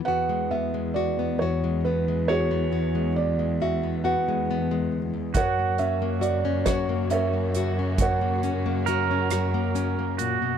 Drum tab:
HH |------|------|xxxxxx|xxxxxx|
SD |------|------|---r--|---r--|
BD |------|------|o--o--|o-----|